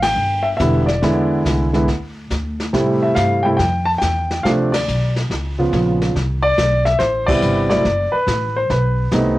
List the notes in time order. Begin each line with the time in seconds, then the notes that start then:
Already playing: A1
0.02 G5, snare, ride
0.16 G1, brush sweep
0.43 E5
0.57 E1 D3 G3 B3 E5, kick, snare, hi-hat pedal
0.62 E4
0.86 D5, snare
1.02 E2 D3 G#3 B3 E4, brush sweep, kick, snare
1.45 C2, kick, snare, hi-hat pedal
1.73 D3 G#3 B3 E4, snare
1.88 D2, brush sweep, kick, snare
2.30 D2, kick, snare, hi-hat pedal
2.60 snare
2.73 A2 C3 G3 A3 E4, brush sweep, kick, snare
3.03 E5
3.15 G2 F5, kick, snare, hi-hat pedal
3.43 C3 G3 A3 E4 G5
3.57 F2 G5, brush sweep, kick, snare
3.85 A5
3.98 E2 G5, kick, snare, hi-hat pedal
4.31 snare
4.43 D2 C3 F3 A3 D4 F5, brush sweep, kick, snare
4.72 D5, snare, ride
4.88 B1, hi-hat pedal
5.16 snare
5.29 C#2, brush sweep, kick, snare
5.58 C#3 F3 B3 F4
5.72 A#1, kick, snare, hi-hat pedal
6.01 snare
6.15 C2, brush sweep, kick, snare
6.42 D5
6.57 B1, kick, snare, hi-hat pedal
6.85 E5, snare
6.99 A1 C5, brush sweep, kick, snare
7.26 C3 G3 B3 E4 D5, kick, crash
7.42 G1, hi-hat pedal
7.70 C3 F#3 A3 E4 D5, snare
7.85 F#1, brush sweep, kick, snare
8.12 B4, muted upright bass stroke
8.27 A1, kick, snare, hi-hat pedal
8.56 C5
8.70 B1 B4, brush sweep, kick, snare
9.11 C2 C3 A3 B3 D#4, kick, snare, hi-hat pedal